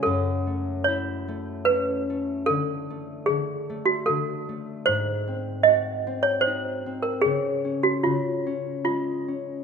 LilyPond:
<<
  \new Staff \with { instrumentName = "Toy piano" } { \time 3/4 \key fis \minor \tempo 4 = 75 a'4 cis''4 b'4 | a'4 gis'8. fis'16 a'4 | bis'4 dis''8. cis''16 bis'8. ais'16 | gis'8. fis'16 eis'4 eis'4 | }
  \new Staff \with { instrumentName = "Harp" } { \time 3/4 \key fis \minor fis,8 a8 e'8 a8 cis'8 a8 | d8 a8 d8 a8 d8 a8 | gis,8 bis8 fis'8 bis8 dis'8 bis8 | cis8 cis'8 cis8 cis'8 gis8 cis'8 | }
>>